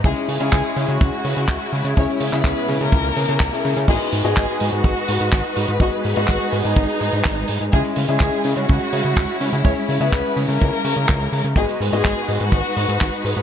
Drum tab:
CC |----------------|----------------|x---------------|----------------|
HH |xxoxxxoxxxoxxxox|xxoxxxoxxxoxxxox|xxoxxxoxxxoxxxox|xxoxxxooxxoxxxox|
CP |----x-------x---|---xx-------x---|----x-------x---|----x-------x---|
BD |o---o---o---o---|o---o---o---o---|o---o---o---o---|o---o---o---o---|

CC |----------------|----------------|----------------|
HH |xxoxxxoxxxoxxxox|xxoxxxooxxoxxxox|xxoxxxoxxxoxxxox|
CP |----x-------x---|----x-------x---|----x-------x---|
BD |o---o---o---o---|o---o---o---o---|o---o---o---o---|